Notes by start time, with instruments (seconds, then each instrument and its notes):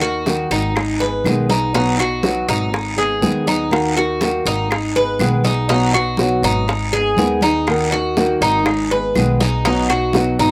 Already playing: upright bass D#2
0.01 nylon-string guitar D#4 F#4 A#4, cuban tres F#4, high bongo, high conga
0.26 nylon-string guitar D#3 A#3 D#4 F#4 A#4, high bongo, high conga, short guiro
0.50 upright bass G#1, cuban tres D#4, high bongo, high conga, short guiro
0.76 muted nylon-string guitar stroke, high bongo, high conga, long guiro, claves
1.00 nylon-string guitar B3 D#4 G#4, cuban tres B4, high conga
1.24 upright bass B1, nylon-string guitar D#3 G#3 B3 D#4 G#4, high bongo, low bongo, high conga, short guiro, claves
1.49 nylon-string guitar B3 D#4 G#4, cuban tres D#4, high bongo, high conga, short guiro
1.74 nylon-string guitar B2 F#3 B3 D#4 F#4, cuban tres D#4, high bongo, long guiro
1.98 nylon-string guitar F#4, cuban tres F#4, high bongo, high conga, claves
2.23 nylon-string guitar B2 F#3 B3 D#4 F#4, high bongo, high conga, short guiro
2.48 upright bass G#1, cuban tres D#4, high bongo, high conga, short guiro
2.72 muted nylon-string guitar stroke, high bongo, high conga, long guiro
2.96 nylon-string guitar B3 D#4 G#4, cuban tres G#4, high conga, claves
3.21 upright bass D#2, nylon-string guitar D#3 G#3 B3 D#4 G#4, high bongo, low bongo, high conga, short guiro
3.46 nylon-string guitar B3 D#4 G#4, cuban tres D#4, high bongo, high conga, short guiro
3.70 nylon-string guitar D#3 A#3 D#4 F#4 A#4, high bongo, high conga, long guiro, claves
3.96 nylon-string guitar D#4 F#4 A#4, cuban tres F#4, high bongo, high conga
4.21 nylon-string guitar D#3 A#3 D#4 F#4 A#4, high bongo, high conga, short guiro
4.45 upright bass G#1, cuban tres D#4, high bongo, high conga, short guiro
4.70 muted nylon-string guitar stroke, high bongo, high conga, long guiro, claves
4.95 nylon-string guitar B3 D#4 G#4, cuban tres B4, high conga
5.19 upright bass B1, nylon-string guitar D#3 G#3 B3 D#4 G#4, high bongo, low bongo, high conga, short guiro, claves
5.44 nylon-string guitar B3 D#4 G#4, cuban tres D#4, high bongo, high conga, short guiro
5.68 nylon-string guitar B2 F#3 B3 D#4 F#4, cuban tres D#4, high bongo, high conga, long guiro
5.92 nylon-string guitar B3 D#4 F#4, cuban tres F#4, high bongo, high conga, claves
6.17 nylon-string guitar B2 F#3 B3 D#4, high bongo, high conga, short guiro
6.21 nylon-string guitar F#4
6.42 upright bass G#1, cuban tres D#4, high bongo, high conga, short guiro
6.67 muted nylon-string guitar stroke, high bongo, high conga, long guiro
6.92 nylon-string guitar B3 D#4 G#4, cuban tres G#4, high conga, claves
7.17 upright bass D#2, nylon-string guitar D#3 G#3 B3 D#4 G#4, high bongo, low bongo, high conga, short guiro
7.41 cuban tres D#4, nylon-string guitar D#4 G#4, high bongo, high conga, short guiro
7.45 nylon-string guitar B3
7.67 nylon-string guitar D#3 A#3 D#4 F#4 A#4, high bongo, high conga, long guiro, claves
7.92 nylon-string guitar D#4 F#4 A#4, cuban tres F#4, high bongo, high conga
8.17 nylon-string guitar D#3 A#3 D#4 F#4 A#4, high bongo, high conga, short guiro
8.41 upright bass G#1, cuban tres D#4, high bongo, high conga, short guiro
8.66 muted nylon-string guitar stroke, high bongo, high conga, long guiro, claves
8.91 nylon-string guitar B3 D#4 G#4, cuban tres B4, high conga
9.15 upright bass B1, nylon-string guitar D#3 G#3 B3 D#4 G#4, high bongo, low bongo, high conga, short guiro, claves
9.40 nylon-string guitar B3 D#4 G#4, cuban tres D#4, high bongo, high conga, short guiro
9.65 nylon-string guitar B2 F#3 B3 D#4 F#4, cuban tres D#4, high bongo, high conga, long guiro
9.89 nylon-string guitar B3 D#4 F#4, cuban tres F#4, high bongo, high conga, claves
10.13 nylon-string guitar B2 F#3 B3 D#4 F#4, high bongo, high conga, short guiro
10.39 upright bass G#1, cuban tres D#4, high bongo, high conga, short guiro